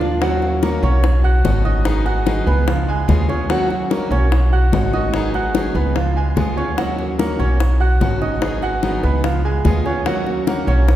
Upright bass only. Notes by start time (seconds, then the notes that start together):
Already playing: D#2
0.83 B1
1.45 G#1
2.47 C#2
3.08 D#2
4.11 B1
4.72 G#1
5.75 C#2
6.36 D#2
7.39 B1
8.01 G#1
9.03 C#2
9.65 D#2
10.67 B1